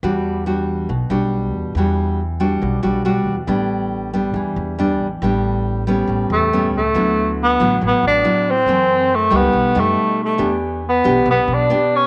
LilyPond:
<<
  \new Staff \with { instrumentName = "Nylon-string guitar" } { \time 4/4 \key e \dorian \tempo 4 = 139 << { <g d' fis'>4 <g d' fis'>4 r8 <g d' fis'>4. | <g d' fis'>4 r8 <g d' fis'>4 <g d' fis'>8 <g d' fis'>8 r8 | <g b d'>4. <g b d'>4. <g b d'>8 r8 | <g b d'>4. <g b cis'>4. <g b cis'>8 r8 |
<fis b e'>4. <fis b e'>4. <fis b e'>8 r8 | <e a c'>4 r8 <g a ees'>4 <g a dis'>4. | <b d' g'>4 r8 <b d' g'>4. <b d' g'>4 | } \\ { e2 b,2 | e2 b,2 | a,2 e2 | a,2 a,2 |
d2 a,2 | fis,2 b,2 | e2 b,2 | } >> }
  \new Staff \with { instrumentName = "Tenor saxophone" } { \time 4/4 \key e \dorian r1 | r1 | r1 | r2 r8 a4 a8~ |
a4 b4 b8 d'4 c'8~ | c'4 a8 b4 a4 a8~ | a8 r8 b4 b8 d'4 cis'8 | }
  \new Staff \with { instrumentName = "Upright bass" } { \clef bass \time 4/4 \key e \dorian e,2 b,,8 b,,4 e,8 | e,2 b,,8 b,,4 e,8 | a,,2 e,8 e,4 a,,8 | a,,2 a,,8 e,4 cis,8 |
d,4. a,,8 a,,16 r16 a,,8 r4 | fis,4. cis,8 b,,8 fis,8 r4 | e,4. b,,8 b,,16 r16 b,,8 r4 | }
>>